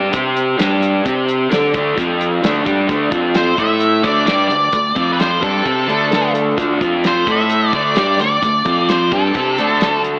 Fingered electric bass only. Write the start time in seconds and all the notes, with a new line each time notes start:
Already playing: G2
0.14 C3
0.60 G2
1.06 C3
1.52 D3
1.74 D2
1.98 F2
2.44 D2
2.66 G2
2.89 D2
3.12 F2
3.58 A2
4.04 D2
4.26 G2
4.49 D2
4.73 D2
4.97 F2
5.43 G2
5.65 C3
5.88 D2
6.58 D2
6.81 F2
7.27 A2
7.73 D2
7.96 G2
8.19 D2
8.42 D2
8.66 F2
9.12 G2
9.35 C3
9.58 D2